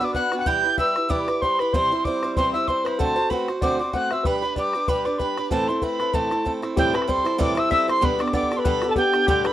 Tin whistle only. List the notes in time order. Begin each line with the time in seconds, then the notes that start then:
0.04 D6
0.14 F#6
0.39 F#6
0.46 G6
0.79 E6
1.10 D6
1.41 C6
1.59 B5
1.73 C6
2.04 D6
2.35 C6
2.53 E6
2.67 C6
2.84 B5
2.99 A5
3.29 B5
3.62 D6
3.79 D6
3.94 F#6
4.12 E6
4.25 B5
4.58 D6
4.88 B5
5.05 D6
5.18 B5
5.51 A5
5.68 C6
5.83 B5
6.14 A5
6.78 G5
6.94 B5
7.09 C6
7.40 D6
7.59 E6
7.72 E6
7.89 C6
8.04 B5
8.20 D6
8.35 D6
8.56 B5 C6
8.66 B5
8.90 A5
8.97 G5
9.29 G5
9.46 B5